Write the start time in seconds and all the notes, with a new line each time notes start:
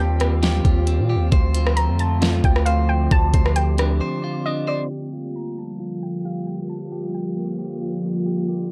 Already playing: D#2 D#3 G3 A#3 C4 F4 G4 F5 G5
0.20 C4, cross-stick, closed hi-hat
0.43 G4, snare, closed hi-hat
0.65 D#2 F4, kick, closed hi-hat
0.87 C4, closed hi-hat
0.98 A#2
1.10 G4
1.15 D#2
1.32 D2 D3 F3 A3 C4 F4 C5 D5, kick, closed hi-hat
1.54 F4, closed hi-hat
1.67 cross-stick
1.77 A#5, closed hi-hat
1.88 F2
1.99 A5, closed hi-hat
2.21 F4, snare, closed hi-hat
2.44 D2 G5, kick, closed hi-hat
2.56 cross-stick
2.65 C5 F5, closed hi-hat
2.89 G5
3.11 D2 G4 A5, kick, closed hi-hat
3.34 D2 C5, kick, closed hi-hat
3.46 cross-stick
3.56 G5, closed hi-hat
3.78 D4, cross-stick, closed hi-hat
4.01 C5
4.24 F4
4.46 D4 D#5
4.67 C5 D5
4.90 D3 F3 G3 A#3 F4 G4 F5
5.13 F4
5.36 A#5
5.58 A5
5.80 F4
6.03 G5
6.25 G4 F5
6.47 G5
6.69 A5
6.92 G4
7.14 G5
7.37 A#3
7.59 G4
7.81 F4
8.04 A#3
8.26 G4
8.49 G4